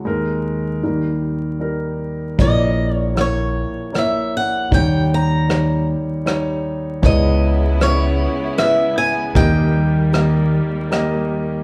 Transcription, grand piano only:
<<
  \new Staff \with { instrumentName = "Grand piano" } { \time 3/4 \key dis \phrygian \tempo 4 = 77 <gis dis' ais'>4 <g dis' ais'>4 <g dis' ais'>4 | <ais e' cis''>4 <ais e' cis''>4 <ais e' cis''>4 | <g dis' cis''>4 <g dis' cis''>4 <g dis' cis''>4 | <b e' cis''>4 <b e' cis''>4 <b e' b'>4 |
<ais g' dis''>4 <ais g' dis''>4 <ais g' dis''>4 | }
  \new Staff \with { instrumentName = "Grand piano" } { \clef bass \time 3/4 \key dis \phrygian <dis, dis>4 <dis, dis>2 | <ais,, ais,>2. | <dis, dis>2. | <cis, cis>2. |
<dis, dis>2. | }
>>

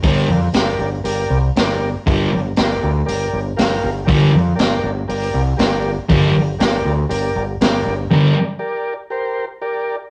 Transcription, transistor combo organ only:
\new Staff \with { instrumentName = "Transistor combo organ" } { \time 4/4 \key g \minor \tempo 4 = 119 <g' bes' d''>8 r8 <g' bes' d''>8 r8 <g' bes' d''>8 r8 <g' bes' d''>8 r8 | <g' bes' d''>8 r8 <g' bes' d''>8 r8 <g' bes' d''>8 r8 <g' bes' f''>8 r8 | <g' bes' d''>8 r8 <g' bes' d''>8 r8 <g' bes' d''>8 r8 <g' bes' d''>8 r8 | <g' bes' d''>8 r8 <g' bes' d''>8 r8 <g' bes' d''>8 r8 <g' bes' d''>8 r8 |
<g' bes' d''>8 r8 <g' bes' d''>8 r8 <g' bes' c''>8 r8 <g' bes' d''>8 r8 | }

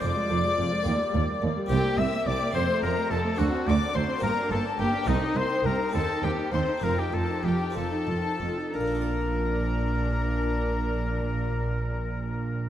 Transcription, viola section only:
\new Staff \with { instrumentName = "Viola section" } { \time 6/8 \key bes \major \tempo 4. = 69 f16 aes16 f16 aes16 f16 aes16 bes16 g16 bes16 g16 bes16 g16 | c'16 bes16 c'16 bes16 c'16 bes16 c'16 a16 c'16 a16 c'16 a16 | d'16 c'16 d'16 c'16 d'16 c'16 bes16 d'16 bes16 d'16 bes16 d'16 | c'16 ees'16 c'16 ees'16 c'16 ees'16 c'16 ees'16 c'16 ees'16 c'16 ees'16 |
f'16 ees'16 f'16 ees'16 f'16 ees'16 f'16 ees'16 f'16 ees'16 f'16 ees'16 | d'2.~ | d'2. | }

